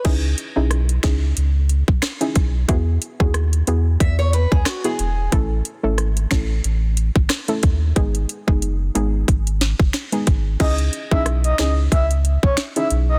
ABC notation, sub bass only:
X:1
M:4/4
L:1/16
Q:"Swing 16ths" 1/4=91
K:C#m
V:1 name="Sub bass" clef=bass
C,,2 z B,,,3 C,,2 C,,3 B,,, z2 B,,,2 | E,,2 z D,,3 E,,2 E,,3 D,, z2 E,,,2 | A,,,2 z G,,,3 A,,,2 A,,,3 G,,, z2 D,,2 | G,,,2 z F,,,3 G,,,2 G,,,3 F,,, z2 G,,,2 |
C,,2 z B,,,3 C,,2 C,,3 B,,, z2 B,,,2 |]